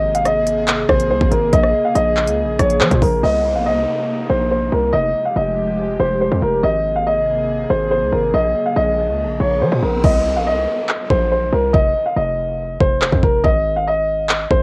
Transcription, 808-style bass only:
0.00 0.85 G#1 loud
0.89 1.12 G#1 loud
1.10 1.20 C2 loud
1.21 1.31 G#1 loud
1.32 1.52 G#1 loud
1.53 1.73 A#1 loud
1.95 2.29 A#1 loud
2.27 2.45 C#2 loud
2.43 2.59 A#1 medium
2.59 2.82 A#1 loud
2.81 2.91 F3 loud
2.91 3.01 A#2 loud
3.02 3.22 A#1 loud
3.23 3.57 C2 loud
3.55 3.73 A#1 medium
3.71 3.86 C2 loud
4.30 4.70 A#1 loud
4.72 4.93 C2 loud
4.93 5.14 F1 loud
5.36 5.97 F1 loud
6.00 6.30 F1 loud
6.32 6.42 F2 loud
6.42 6.63 F1 loud
6.63 7.66 G#1 loud
7.70 8.03 G#1 loud
8.02 8.12 C2 loud
8.12 8.33 G#1 loud
8.34 8.54 A#1 loud
8.76 9.10 A#1 loud
9.08 9.26 C#2 medium
9.24 9.39 A#1 medium
9.40 9.63 A#1 loud
9.61 9.71 F3 loud
9.72 9.82 A#2 loud
9.83 10.03 A#1 loud
10.04 10.37 C2 loud
10.36 10.53 A#1 loud
10.52 10.67 C2 loud
11.10 11.51 A#1 loud
11.53 11.73 C2 loud
11.74 11.95 F1 loud
12.17 12.78 F1 loud
12.80 13.11 F1 loud
13.12 13.23 F2 loud
13.23 13.44 F1 loud
13.44 14.47 G#1 loud
14.51 14.63 G#1 loud

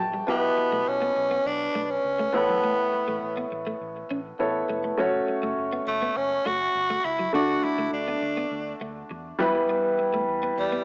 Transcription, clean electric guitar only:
0.14 0.22 G3 medium
0.28 0.37 B3 medium
0.58 muted clean electric guitar stroke soft
0.72 0.81 A3 medium
1.02 1.10 B3 medium
1.16 muted clean electric guitar stroke soft
1.31 1.39 B3 medium
1.75 1.83 A3 medium
2.19 2.28 A3 medium
2.34 muted clean electric guitar stroke soft
2.49 2.57 F#3 medium
2.64 2.72 A3 medium
2.93 muted clean electric guitar stroke soft
3.08 3.16 A3 medium
3.37 3.46 B3 medium
3.52 muted clean electric guitar stroke soft
3.67 3.75 A3 medium
4.11 4.19 C#4 medium
4.40 muted clean electric guitar stroke soft
4.70 4.78 A3 medium
4.84 4.92 A3 medium
4.99 5.07 F#3 medium
5.28 muted clean electric guitar stroke soft
5.43 5.51 A3 medium
5.73 5.81 B3 medium
5.87 muted clean electric guitar stroke soft
6.02 6.10 B3 medium
6.46 6.54 A3 medium
6.90 6.98 A3 medium
7.05 muted clean electric guitar stroke soft
7.19 7.28 F#3 medium
7.34 7.43 D4 medium
7.64 muted clean electric guitar stroke soft
7.78 7.87 A3 medium
8.08 8.16 B3 medium
8.23 muted clean electric guitar stroke soft
8.37 8.46 B3 medium
8.81 8.90 A3 medium
9.11 muted clean electric guitar stroke soft
9.40 9.48 F#3 medium
9.55 9.63 G3 medium
9.69 9.78 B3 medium
9.99 muted clean electric guitar stroke soft
10.14 10.22 A3 medium
10.43 10.51 B3 medium
10.58 muted clean electric guitar stroke soft
10.72 10.81 B3 medium

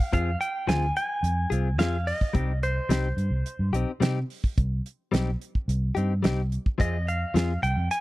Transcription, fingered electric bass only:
0.13 0.35 F2 medium
0.68 0.90 D2 medium
1.23 1.45 F2 loud
1.51 1.78 C2 medium
1.78 2.12 F2 medium
2.21 muted fingered electric bass stroke soft
2.35 2.78 C2 loud
2.89 3.11 C2 medium
3.17 3.28 G2 medium
3.30 3.42 C2 medium
3.59 3.70 G2 medium
3.72 3.84 B1 medium
4.01 4.23 C3 medium
4.58 4.79 C2 medium
5.13 5.35 B1 medium
5.68 5.90 C2 medium
5.96 6.25 G2 medium
6.24 6.57 C2 medium
6.67 muted fingered electric bass stroke soft
6.80 7.23 F2 loud
7.34 7.56 F2 loud
7.63 7.74 C2 medium
7.77 7.87 F2 medium

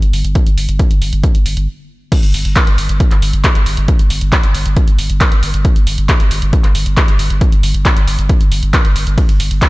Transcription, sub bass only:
0.02 0.12 G1 medium
0.13 0.24 G1 loud
0.24 0.35 G1 medium
0.46 0.57 G1 medium
0.57 0.68 G1 loud
0.68 0.79 G1 medium
0.90 1.01 G1 medium
1.02 1.12 G1 loud
1.13 1.23 G1 medium
1.35 1.45 G1 medium
1.46 1.56 G1 loud
1.57 1.67 G1 medium
2.23 2.33 G1 medium
2.34 2.44 G1 loud
2.45 2.56 G1 medium
2.67 2.77 G1 medium
2.78 2.89 G1 loud
2.89 3.00 G1 medium
3.11 3.21 G1 medium
3.22 3.33 G1 loud
3.33 3.44 G1 medium
3.55 3.66 G1 medium
3.66 3.77 G1 loud
3.77 3.88 G1 medium
4.00 4.10 G1 medium
4.11 4.21 G1 loud
4.22 4.32 G1 medium
4.44 4.54 G1 medium
4.55 4.65 G1 loud
4.66 4.76 G1 medium
4.88 4.98 G1 medium
4.99 5.09 G1 loud
5.10 5.21 G1 medium
5.32 5.42 G1 medium
5.43 5.53 G1 loud
5.54 5.65 G1 medium
5.76 5.86 G1 medium
5.87 5.97 G1 loud
5.98 6.09 G1 medium
6.20 6.30 G1 medium
6.31 6.42 G1 loud
6.42 6.53 G1 medium
6.64 6.74 G1 medium
6.75 6.85 G1 loud
6.86 6.97 G1 medium
7.08 7.18 G1 medium
7.19 7.30 G1 loud
7.30 7.41 G1 medium
7.52 7.62 G1 medium
7.63 7.74 G1 loud
7.74 7.85 G1 medium
7.96 8.07 G1 medium
8.07 8.18 G1 loud
8.18 8.29 G1 medium
8.40 8.51 G1 medium
8.51 8.62 G1 loud
8.63 8.73 G1 medium
8.85 8.95 G1 medium
8.96 9.06 G1 loud
9.07 9.17 G1 medium
9.29 9.39 G1 medium
9.40 9.50 G1 loud
9.51 9.62 G1 medium

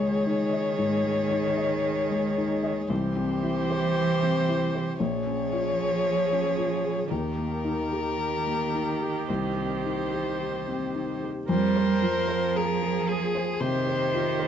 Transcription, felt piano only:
0.00 0.75 C#2 medium
0.00 1.04 G#3 soft
0.00 0.27 D#4 soft
0.00 0.32 D#5 soft
0.27 0.69 D#4 soft
0.53 0.95 D#5 medium
0.79 1.21 G#2 medium
1.04 1.47 G#3 soft
1.31 1.73 D#4 medium
1.57 2.42 D#5 medium
2.11 2.53 G#3 soft
2.38 2.80 D#4 medium
2.63 2.90 D#5 medium
2.90 4.95 C2 medium
3.16 3.59 C4 medium
3.43 3.85 E4 medium
3.70 4.53 C5 medium
4.23 4.64 C4 soft
4.48 4.89 E4 medium
4.75 5.00 C5 medium
5.00 7.06 A#1 medium
5.26 5.68 C#4 soft
5.52 5.94 F4 medium
5.79 6.63 G#4 medium
6.32 6.74 C#4 medium
6.58 7.00 F4 medium
6.85 7.11 G#4 soft
7.11 9.25 D#2 medium
7.38 7.81 A#3 soft
7.64 8.08 D#4 soft
7.93 8.80 G4 soft
8.47 8.90 A#3 soft
8.75 9.18 D#4 soft
9.02 9.29 G4 soft
9.30 11.45 C2 soft
9.57 10.01 C4 soft
9.85 10.29 D#4 soft
10.13 11.00 G4 soft
10.68 11.12 C4 soft
10.95 11.38 D#4 soft
11.23 11.49 G4 soft
11.49 13.57 F2 medium
11.76 12.18 C5 medium
12.02 12.44 F4 medium
12.28 12.71 C5 medium
12.55 12.97 G#4 medium
12.82 13.08 A#4 soft
13.08 13.50 G#4 medium
13.35 13.77 C5 medium
13.60 14.03 C3 medium
13.87 14.29 C5 medium
14.14 14.48 F4 medium
14.40 14.48 C5 medium

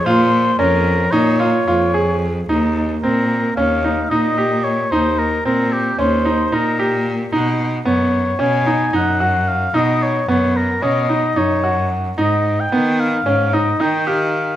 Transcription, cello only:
0.06 0.56 A#2 medium
0.59 1.10 F2 medium
1.12 1.64 A#2 medium
1.67 2.45 F2 medium
2.49 3.01 D#2 medium
3.04 3.55 A#2 medium
3.58 4.09 D#2 medium
4.11 4.88 A#2 medium
4.92 5.43 D#2 medium
5.46 5.96 A#2 medium
5.99 6.50 D#2 medium
6.52 7.29 A#2 medium
7.33 7.84 B2 medium
7.86 8.37 F#2 medium
8.40 8.91 B2 medium
8.94 9.70 F#2 medium
9.75 10.25 B2 medium
10.28 10.79 F#2 medium
10.82 11.34 B2 medium
11.37 12.14 F#2 medium
12.18 12.69 G#2 medium
12.71 13.23 D#3 medium
13.25 13.77 G#2 medium
13.80 14.56 D#3 medium

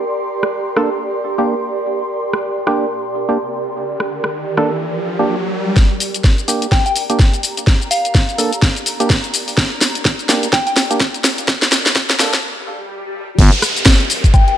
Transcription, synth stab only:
0.76 0.90 A#3 medium
0.76 0.90 D4 medium
0.76 0.90 A4 loud
1.38 1.55 A#3 medium
1.38 1.55 D4 medium
1.38 1.55 G4 loud
2.67 2.86 A#3 medium
2.67 2.86 D4 medium
2.67 2.86 G4 medium
3.29 3.38 A#3 medium
3.29 3.38 D4 medium
3.29 3.38 G4 medium
4.58 4.71 A#3 medium
4.58 4.71 D4 medium
4.58 4.71 A4 loud
5.19 5.36 A#3 medium
5.19 5.36 D4 medium
5.19 5.36 G4 loud
6.48 6.67 A#3 medium
6.48 6.67 D4 medium
6.48 6.67 G4 medium
7.10 7.19 A#3 medium
7.10 7.19 D4 medium
7.10 7.19 G4 loud
8.38 8.52 A#3 loud
8.38 8.52 D4 medium
8.38 8.52 A4 loud
9.00 9.17 A#3 medium
9.00 9.17 D4 medium
9.00 9.17 G4 loud
10.29 10.48 A#3 medium
10.29 10.48 D4 medium
10.29 10.48 G4 medium
10.90 11.00 A#3 medium
10.90 11.00 D4 medium
10.90 11.00 G4 medium
12.19 12.33 A#3 medium
12.19 12.33 D4 medium
12.19 12.32 A4 loud

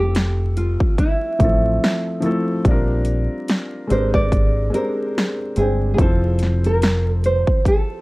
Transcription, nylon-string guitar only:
0.00 0.58 G4 medium
0.57 0.99 F4 medium
0.99 2.20 E4 medium
3.92 4.14 C5 medium
4.15 4.74 D5 loud
4.74 5.58 A#4 loud
5.58 5.93 G#4 medium
5.94 5.99 G#4 medium
6.00 6.66 A4 medium
6.66 7.09 A#4 medium
7.09 7.25 A4 medium
7.26 7.63 C5 medium
7.68 8.01 A4 medium

